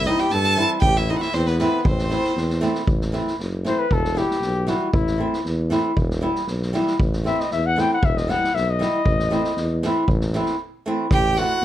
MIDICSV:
0, 0, Header, 1, 6, 480
1, 0, Start_track
1, 0, Tempo, 514139
1, 768, Time_signature, 2, 2, 24, 8
1, 10875, End_track
2, 0, Start_track
2, 0, Title_t, "Violin"
2, 0, Program_c, 0, 40
2, 58, Note_on_c, 0, 75, 98
2, 178, Note_on_c, 0, 79, 97
2, 192, Note_off_c, 0, 75, 0
2, 286, Note_on_c, 0, 81, 127
2, 300, Note_off_c, 0, 79, 0
2, 653, Note_off_c, 0, 81, 0
2, 752, Note_on_c, 0, 79, 115
2, 904, Note_on_c, 0, 76, 96
2, 918, Note_off_c, 0, 79, 0
2, 1020, Note_on_c, 0, 75, 91
2, 1034, Note_off_c, 0, 76, 0
2, 1089, Note_off_c, 0, 75, 0
2, 1095, Note_on_c, 0, 78, 66
2, 1131, Note_on_c, 0, 76, 97
2, 1145, Note_off_c, 0, 78, 0
2, 1248, Note_on_c, 0, 72, 94
2, 1262, Note_off_c, 0, 76, 0
2, 1369, Note_on_c, 0, 71, 85
2, 1383, Note_off_c, 0, 72, 0
2, 1482, Note_off_c, 0, 71, 0
2, 1488, Note_on_c, 0, 71, 65
2, 1710, Note_off_c, 0, 71, 0
2, 1723, Note_on_c, 0, 72, 90
2, 2406, Note_off_c, 0, 72, 0
2, 10381, Note_on_c, 0, 79, 112
2, 10619, Note_on_c, 0, 78, 117
2, 10633, Note_off_c, 0, 79, 0
2, 10875, Note_off_c, 0, 78, 0
2, 10875, End_track
3, 0, Start_track
3, 0, Title_t, "Trumpet"
3, 0, Program_c, 1, 56
3, 75, Note_on_c, 1, 63, 74
3, 186, Note_on_c, 1, 67, 81
3, 200, Note_off_c, 1, 63, 0
3, 320, Note_on_c, 1, 69, 88
3, 334, Note_off_c, 1, 67, 0
3, 669, Note_off_c, 1, 69, 0
3, 794, Note_on_c, 1, 67, 86
3, 923, Note_on_c, 1, 64, 77
3, 937, Note_off_c, 1, 67, 0
3, 1035, Note_on_c, 1, 63, 72
3, 1049, Note_off_c, 1, 64, 0
3, 1112, Note_off_c, 1, 63, 0
3, 1118, Note_on_c, 1, 66, 52
3, 1153, Note_on_c, 1, 64, 69
3, 1167, Note_off_c, 1, 66, 0
3, 1263, Note_on_c, 1, 60, 83
3, 1277, Note_off_c, 1, 64, 0
3, 1391, Note_on_c, 1, 59, 62
3, 1405, Note_off_c, 1, 60, 0
3, 1496, Note_off_c, 1, 59, 0
3, 1531, Note_on_c, 1, 59, 69
3, 1733, Note_off_c, 1, 59, 0
3, 1764, Note_on_c, 1, 60, 67
3, 2427, Note_off_c, 1, 60, 0
3, 3434, Note_on_c, 1, 72, 90
3, 3541, Note_on_c, 1, 71, 90
3, 3555, Note_off_c, 1, 72, 0
3, 3669, Note_on_c, 1, 69, 93
3, 3683, Note_off_c, 1, 71, 0
3, 3903, Note_on_c, 1, 67, 79
3, 3917, Note_off_c, 1, 69, 0
3, 4374, Note_on_c, 1, 66, 66
3, 4388, Note_off_c, 1, 67, 0
3, 4604, Note_off_c, 1, 66, 0
3, 4610, Note_on_c, 1, 64, 77
3, 5056, Note_off_c, 1, 64, 0
3, 6787, Note_on_c, 1, 76, 80
3, 6915, Note_on_c, 1, 75, 69
3, 6929, Note_off_c, 1, 76, 0
3, 7020, Note_off_c, 1, 75, 0
3, 7026, Note_on_c, 1, 76, 83
3, 7152, Note_on_c, 1, 78, 99
3, 7166, Note_off_c, 1, 76, 0
3, 7287, Note_on_c, 1, 79, 76
3, 7301, Note_off_c, 1, 78, 0
3, 7395, Note_off_c, 1, 79, 0
3, 7408, Note_on_c, 1, 78, 87
3, 7517, Note_on_c, 1, 76, 80
3, 7531, Note_off_c, 1, 78, 0
3, 7630, Note_on_c, 1, 75, 76
3, 7644, Note_off_c, 1, 76, 0
3, 7747, Note_on_c, 1, 78, 92
3, 7761, Note_off_c, 1, 75, 0
3, 7983, Note_on_c, 1, 76, 82
3, 7997, Note_off_c, 1, 78, 0
3, 8125, Note_on_c, 1, 75, 84
3, 8139, Note_off_c, 1, 76, 0
3, 9312, Note_off_c, 1, 75, 0
3, 10392, Note_on_c, 1, 67, 92
3, 10627, Note_on_c, 1, 66, 83
3, 10641, Note_off_c, 1, 67, 0
3, 10875, Note_off_c, 1, 66, 0
3, 10875, End_track
4, 0, Start_track
4, 0, Title_t, "Nylon-string guitar"
4, 0, Program_c, 2, 24
4, 52, Note_on_c, 2, 52, 54
4, 59, Note_on_c, 2, 55, 54
4, 60, Note_on_c, 2, 60, 59
4, 72, Note_on_c, 2, 64, 67
4, 234, Note_off_c, 2, 52, 0
4, 237, Note_off_c, 2, 60, 0
4, 238, Note_off_c, 2, 55, 0
4, 244, Note_off_c, 2, 64, 0
4, 524, Note_on_c, 2, 52, 69
4, 531, Note_on_c, 2, 55, 67
4, 536, Note_on_c, 2, 60, 70
4, 542, Note_on_c, 2, 64, 68
4, 709, Note_off_c, 2, 52, 0
4, 713, Note_off_c, 2, 55, 0
4, 716, Note_off_c, 2, 60, 0
4, 717, Note_off_c, 2, 64, 0
4, 1010, Note_on_c, 2, 52, 58
4, 1016, Note_on_c, 2, 57, 52
4, 1022, Note_on_c, 2, 60, 55
4, 1029, Note_on_c, 2, 64, 71
4, 1192, Note_off_c, 2, 52, 0
4, 1194, Note_off_c, 2, 57, 0
4, 1198, Note_off_c, 2, 60, 0
4, 1199, Note_off_c, 2, 64, 0
4, 1492, Note_on_c, 2, 52, 77
4, 1496, Note_on_c, 2, 57, 68
4, 1500, Note_on_c, 2, 60, 66
4, 1509, Note_on_c, 2, 64, 82
4, 1673, Note_off_c, 2, 52, 0
4, 1673, Note_off_c, 2, 57, 0
4, 1676, Note_off_c, 2, 60, 0
4, 1680, Note_off_c, 2, 64, 0
4, 1957, Note_on_c, 2, 52, 57
4, 1962, Note_on_c, 2, 57, 50
4, 1967, Note_on_c, 2, 60, 47
4, 1975, Note_on_c, 2, 64, 63
4, 2144, Note_off_c, 2, 52, 0
4, 2147, Note_off_c, 2, 57, 0
4, 2149, Note_off_c, 2, 60, 0
4, 2153, Note_off_c, 2, 64, 0
4, 2436, Note_on_c, 2, 52, 92
4, 2440, Note_on_c, 2, 57, 74
4, 2446, Note_on_c, 2, 60, 64
4, 2453, Note_on_c, 2, 64, 81
4, 2624, Note_off_c, 2, 52, 0
4, 2624, Note_off_c, 2, 57, 0
4, 2628, Note_off_c, 2, 60, 0
4, 2632, Note_off_c, 2, 64, 0
4, 2913, Note_on_c, 2, 52, 63
4, 2923, Note_on_c, 2, 57, 55
4, 2927, Note_on_c, 2, 60, 58
4, 2930, Note_on_c, 2, 64, 77
4, 3102, Note_off_c, 2, 52, 0
4, 3107, Note_off_c, 2, 57, 0
4, 3109, Note_off_c, 2, 60, 0
4, 3110, Note_off_c, 2, 64, 0
4, 3403, Note_on_c, 2, 52, 62
4, 3410, Note_on_c, 2, 57, 51
4, 3414, Note_on_c, 2, 60, 54
4, 3420, Note_on_c, 2, 64, 72
4, 3588, Note_off_c, 2, 52, 0
4, 3590, Note_off_c, 2, 57, 0
4, 3593, Note_off_c, 2, 60, 0
4, 3595, Note_off_c, 2, 64, 0
4, 3870, Note_on_c, 2, 52, 52
4, 3881, Note_on_c, 2, 55, 44
4, 3887, Note_on_c, 2, 59, 52
4, 3891, Note_on_c, 2, 64, 63
4, 4061, Note_off_c, 2, 52, 0
4, 4068, Note_off_c, 2, 55, 0
4, 4069, Note_off_c, 2, 59, 0
4, 4072, Note_off_c, 2, 64, 0
4, 4356, Note_on_c, 2, 52, 65
4, 4365, Note_on_c, 2, 55, 59
4, 4370, Note_on_c, 2, 59, 59
4, 4372, Note_on_c, 2, 64, 68
4, 4545, Note_off_c, 2, 52, 0
4, 4550, Note_off_c, 2, 55, 0
4, 4550, Note_off_c, 2, 59, 0
4, 4553, Note_off_c, 2, 64, 0
4, 4834, Note_on_c, 2, 52, 56
4, 4844, Note_on_c, 2, 57, 49
4, 4851, Note_on_c, 2, 60, 52
4, 4859, Note_on_c, 2, 64, 61
4, 5024, Note_off_c, 2, 52, 0
4, 5029, Note_off_c, 2, 57, 0
4, 5033, Note_off_c, 2, 60, 0
4, 5037, Note_off_c, 2, 64, 0
4, 5321, Note_on_c, 2, 52, 75
4, 5330, Note_on_c, 2, 57, 75
4, 5333, Note_on_c, 2, 60, 73
4, 5340, Note_on_c, 2, 64, 89
4, 5509, Note_off_c, 2, 52, 0
4, 5513, Note_off_c, 2, 57, 0
4, 5514, Note_off_c, 2, 60, 0
4, 5518, Note_off_c, 2, 64, 0
4, 5798, Note_on_c, 2, 52, 61
4, 5805, Note_on_c, 2, 55, 68
4, 5808, Note_on_c, 2, 59, 57
4, 5811, Note_on_c, 2, 64, 71
4, 5987, Note_off_c, 2, 52, 0
4, 5991, Note_off_c, 2, 55, 0
4, 5992, Note_off_c, 2, 59, 0
4, 5993, Note_off_c, 2, 64, 0
4, 6283, Note_on_c, 2, 52, 72
4, 6288, Note_on_c, 2, 55, 72
4, 6293, Note_on_c, 2, 59, 72
4, 6306, Note_on_c, 2, 64, 83
4, 6470, Note_off_c, 2, 52, 0
4, 6472, Note_off_c, 2, 55, 0
4, 6475, Note_off_c, 2, 59, 0
4, 6482, Note_off_c, 2, 64, 0
4, 6759, Note_on_c, 2, 52, 60
4, 6763, Note_on_c, 2, 57, 45
4, 6769, Note_on_c, 2, 60, 58
4, 6778, Note_on_c, 2, 64, 63
4, 6948, Note_off_c, 2, 52, 0
4, 6950, Note_off_c, 2, 57, 0
4, 6955, Note_off_c, 2, 60, 0
4, 6957, Note_off_c, 2, 64, 0
4, 7241, Note_on_c, 2, 52, 56
4, 7248, Note_on_c, 2, 57, 65
4, 7260, Note_on_c, 2, 60, 60
4, 7261, Note_on_c, 2, 64, 75
4, 7430, Note_off_c, 2, 52, 0
4, 7433, Note_off_c, 2, 57, 0
4, 7439, Note_off_c, 2, 60, 0
4, 7439, Note_off_c, 2, 64, 0
4, 7727, Note_on_c, 2, 52, 59
4, 7736, Note_on_c, 2, 55, 52
4, 7742, Note_on_c, 2, 59, 60
4, 7748, Note_on_c, 2, 64, 67
4, 7913, Note_off_c, 2, 52, 0
4, 7919, Note_off_c, 2, 55, 0
4, 7920, Note_off_c, 2, 59, 0
4, 7924, Note_off_c, 2, 64, 0
4, 8208, Note_on_c, 2, 52, 64
4, 8213, Note_on_c, 2, 55, 67
4, 8221, Note_on_c, 2, 59, 61
4, 8227, Note_on_c, 2, 64, 74
4, 8394, Note_off_c, 2, 52, 0
4, 8395, Note_off_c, 2, 55, 0
4, 8400, Note_off_c, 2, 59, 0
4, 8402, Note_off_c, 2, 64, 0
4, 8685, Note_on_c, 2, 52, 63
4, 8689, Note_on_c, 2, 57, 61
4, 8695, Note_on_c, 2, 60, 68
4, 8702, Note_on_c, 2, 64, 74
4, 8873, Note_off_c, 2, 52, 0
4, 8875, Note_off_c, 2, 57, 0
4, 8878, Note_off_c, 2, 60, 0
4, 8880, Note_off_c, 2, 64, 0
4, 9179, Note_on_c, 2, 52, 88
4, 9184, Note_on_c, 2, 57, 65
4, 9195, Note_on_c, 2, 60, 65
4, 9202, Note_on_c, 2, 64, 81
4, 9360, Note_off_c, 2, 52, 0
4, 9361, Note_off_c, 2, 57, 0
4, 9368, Note_off_c, 2, 60, 0
4, 9371, Note_off_c, 2, 64, 0
4, 9654, Note_on_c, 2, 52, 82
4, 9663, Note_on_c, 2, 57, 62
4, 9668, Note_on_c, 2, 60, 64
4, 9674, Note_on_c, 2, 64, 75
4, 9837, Note_off_c, 2, 52, 0
4, 9841, Note_off_c, 2, 57, 0
4, 9844, Note_off_c, 2, 60, 0
4, 9847, Note_off_c, 2, 64, 0
4, 10137, Note_on_c, 2, 52, 72
4, 10141, Note_on_c, 2, 57, 83
4, 10149, Note_on_c, 2, 60, 68
4, 10153, Note_on_c, 2, 64, 92
4, 10319, Note_off_c, 2, 52, 0
4, 10320, Note_off_c, 2, 57, 0
4, 10325, Note_off_c, 2, 60, 0
4, 10326, Note_off_c, 2, 64, 0
4, 10617, Note_on_c, 2, 52, 53
4, 10624, Note_on_c, 2, 57, 63
4, 10631, Note_on_c, 2, 60, 50
4, 10636, Note_on_c, 2, 64, 64
4, 10799, Note_off_c, 2, 52, 0
4, 10801, Note_off_c, 2, 57, 0
4, 10806, Note_off_c, 2, 60, 0
4, 10808, Note_off_c, 2, 64, 0
4, 10875, End_track
5, 0, Start_track
5, 0, Title_t, "Tuba"
5, 0, Program_c, 3, 58
5, 0, Note_on_c, 3, 36, 85
5, 98, Note_off_c, 3, 36, 0
5, 291, Note_on_c, 3, 43, 89
5, 577, Note_off_c, 3, 43, 0
5, 759, Note_on_c, 3, 33, 95
5, 1049, Note_off_c, 3, 33, 0
5, 1249, Note_on_c, 3, 40, 96
5, 1536, Note_off_c, 3, 40, 0
5, 1735, Note_on_c, 3, 33, 86
5, 2020, Note_off_c, 3, 33, 0
5, 2202, Note_on_c, 3, 40, 81
5, 2490, Note_off_c, 3, 40, 0
5, 2680, Note_on_c, 3, 33, 81
5, 2969, Note_off_c, 3, 33, 0
5, 3165, Note_on_c, 3, 30, 69
5, 3453, Note_off_c, 3, 30, 0
5, 3651, Note_on_c, 3, 28, 86
5, 3937, Note_off_c, 3, 28, 0
5, 4125, Note_on_c, 3, 35, 80
5, 4413, Note_off_c, 3, 35, 0
5, 4602, Note_on_c, 3, 33, 85
5, 4892, Note_off_c, 3, 33, 0
5, 5090, Note_on_c, 3, 40, 76
5, 5378, Note_off_c, 3, 40, 0
5, 5572, Note_on_c, 3, 28, 92
5, 5860, Note_off_c, 3, 28, 0
5, 6043, Note_on_c, 3, 35, 75
5, 6333, Note_off_c, 3, 35, 0
5, 6529, Note_on_c, 3, 33, 90
5, 6818, Note_off_c, 3, 33, 0
5, 7021, Note_on_c, 3, 40, 83
5, 7306, Note_off_c, 3, 40, 0
5, 7499, Note_on_c, 3, 28, 96
5, 7785, Note_off_c, 3, 28, 0
5, 7972, Note_on_c, 3, 35, 85
5, 8261, Note_off_c, 3, 35, 0
5, 8455, Note_on_c, 3, 33, 101
5, 8743, Note_off_c, 3, 33, 0
5, 8933, Note_on_c, 3, 40, 87
5, 9221, Note_off_c, 3, 40, 0
5, 9413, Note_on_c, 3, 33, 103
5, 9702, Note_off_c, 3, 33, 0
5, 10374, Note_on_c, 3, 33, 88
5, 10662, Note_off_c, 3, 33, 0
5, 10875, End_track
6, 0, Start_track
6, 0, Title_t, "Drums"
6, 50, Note_on_c, 9, 38, 26
6, 143, Note_off_c, 9, 38, 0
6, 166, Note_on_c, 9, 38, 22
6, 260, Note_off_c, 9, 38, 0
6, 282, Note_on_c, 9, 38, 35
6, 376, Note_off_c, 9, 38, 0
6, 401, Note_on_c, 9, 38, 24
6, 494, Note_off_c, 9, 38, 0
6, 765, Note_on_c, 9, 36, 96
6, 858, Note_off_c, 9, 36, 0
6, 887, Note_on_c, 9, 38, 27
6, 980, Note_off_c, 9, 38, 0
6, 1136, Note_on_c, 9, 38, 27
6, 1230, Note_off_c, 9, 38, 0
6, 1246, Note_on_c, 9, 38, 30
6, 1339, Note_off_c, 9, 38, 0
6, 1370, Note_on_c, 9, 38, 23
6, 1464, Note_off_c, 9, 38, 0
6, 1486, Note_on_c, 9, 38, 35
6, 1579, Note_off_c, 9, 38, 0
6, 1727, Note_on_c, 9, 36, 90
6, 1821, Note_off_c, 9, 36, 0
6, 1853, Note_on_c, 9, 38, 28
6, 1947, Note_off_c, 9, 38, 0
6, 1964, Note_on_c, 9, 38, 23
6, 2057, Note_off_c, 9, 38, 0
6, 2093, Note_on_c, 9, 38, 23
6, 2186, Note_off_c, 9, 38, 0
6, 2214, Note_on_c, 9, 38, 26
6, 2307, Note_off_c, 9, 38, 0
6, 2333, Note_on_c, 9, 38, 22
6, 2427, Note_off_c, 9, 38, 0
6, 2442, Note_on_c, 9, 38, 25
6, 2535, Note_off_c, 9, 38, 0
6, 2565, Note_on_c, 9, 38, 21
6, 2659, Note_off_c, 9, 38, 0
6, 2683, Note_on_c, 9, 36, 92
6, 2777, Note_off_c, 9, 36, 0
6, 2811, Note_on_c, 9, 38, 26
6, 2904, Note_off_c, 9, 38, 0
6, 2921, Note_on_c, 9, 38, 23
6, 3014, Note_off_c, 9, 38, 0
6, 3056, Note_on_c, 9, 38, 24
6, 3149, Note_off_c, 9, 38, 0
6, 3173, Note_on_c, 9, 38, 27
6, 3267, Note_off_c, 9, 38, 0
6, 3409, Note_on_c, 9, 38, 26
6, 3503, Note_off_c, 9, 38, 0
6, 3648, Note_on_c, 9, 36, 76
6, 3741, Note_off_c, 9, 36, 0
6, 3777, Note_on_c, 9, 38, 22
6, 3870, Note_off_c, 9, 38, 0
6, 3888, Note_on_c, 9, 38, 25
6, 3982, Note_off_c, 9, 38, 0
6, 4021, Note_on_c, 9, 38, 23
6, 4114, Note_off_c, 9, 38, 0
6, 4125, Note_on_c, 9, 38, 30
6, 4219, Note_off_c, 9, 38, 0
6, 4356, Note_on_c, 9, 38, 28
6, 4449, Note_off_c, 9, 38, 0
6, 4607, Note_on_c, 9, 36, 91
6, 4700, Note_off_c, 9, 36, 0
6, 4731, Note_on_c, 9, 38, 23
6, 4825, Note_off_c, 9, 38, 0
6, 4976, Note_on_c, 9, 38, 22
6, 5070, Note_off_c, 9, 38, 0
6, 5092, Note_on_c, 9, 38, 23
6, 5185, Note_off_c, 9, 38, 0
6, 5328, Note_on_c, 9, 38, 30
6, 5421, Note_off_c, 9, 38, 0
6, 5571, Note_on_c, 9, 36, 76
6, 5664, Note_off_c, 9, 36, 0
6, 5700, Note_on_c, 9, 38, 22
6, 5794, Note_off_c, 9, 38, 0
6, 5931, Note_on_c, 9, 38, 20
6, 6024, Note_off_c, 9, 38, 0
6, 6044, Note_on_c, 9, 38, 28
6, 6137, Note_off_c, 9, 38, 0
6, 6182, Note_on_c, 9, 38, 20
6, 6275, Note_off_c, 9, 38, 0
6, 6289, Note_on_c, 9, 38, 29
6, 6382, Note_off_c, 9, 38, 0
6, 6413, Note_on_c, 9, 38, 24
6, 6507, Note_off_c, 9, 38, 0
6, 6531, Note_on_c, 9, 36, 87
6, 6624, Note_off_c, 9, 36, 0
6, 6656, Note_on_c, 9, 38, 23
6, 6749, Note_off_c, 9, 38, 0
6, 6774, Note_on_c, 9, 38, 24
6, 6867, Note_off_c, 9, 38, 0
6, 6908, Note_on_c, 9, 38, 22
6, 7002, Note_off_c, 9, 38, 0
6, 7011, Note_on_c, 9, 38, 29
6, 7104, Note_off_c, 9, 38, 0
6, 7261, Note_on_c, 9, 38, 33
6, 7354, Note_off_c, 9, 38, 0
6, 7494, Note_on_c, 9, 36, 93
6, 7587, Note_off_c, 9, 36, 0
6, 7627, Note_on_c, 9, 38, 27
6, 7720, Note_off_c, 9, 38, 0
6, 7742, Note_on_c, 9, 38, 28
6, 7836, Note_off_c, 9, 38, 0
6, 7879, Note_on_c, 9, 38, 23
6, 7973, Note_off_c, 9, 38, 0
6, 7996, Note_on_c, 9, 38, 28
6, 8089, Note_off_c, 9, 38, 0
6, 8225, Note_on_c, 9, 38, 27
6, 8319, Note_off_c, 9, 38, 0
6, 8454, Note_on_c, 9, 36, 81
6, 8548, Note_off_c, 9, 36, 0
6, 8583, Note_on_c, 9, 38, 22
6, 8676, Note_off_c, 9, 38, 0
6, 8695, Note_on_c, 9, 38, 21
6, 8788, Note_off_c, 9, 38, 0
6, 8815, Note_on_c, 9, 38, 21
6, 8909, Note_off_c, 9, 38, 0
6, 8931, Note_on_c, 9, 38, 26
6, 9024, Note_off_c, 9, 38, 0
6, 9173, Note_on_c, 9, 38, 27
6, 9266, Note_off_c, 9, 38, 0
6, 9409, Note_on_c, 9, 36, 77
6, 9503, Note_off_c, 9, 36, 0
6, 9530, Note_on_c, 9, 38, 23
6, 9623, Note_off_c, 9, 38, 0
6, 9641, Note_on_c, 9, 38, 23
6, 9735, Note_off_c, 9, 38, 0
6, 9762, Note_on_c, 9, 38, 19
6, 9855, Note_off_c, 9, 38, 0
6, 10370, Note_on_c, 9, 36, 91
6, 10464, Note_off_c, 9, 36, 0
6, 10603, Note_on_c, 9, 38, 26
6, 10696, Note_off_c, 9, 38, 0
6, 10875, End_track
0, 0, End_of_file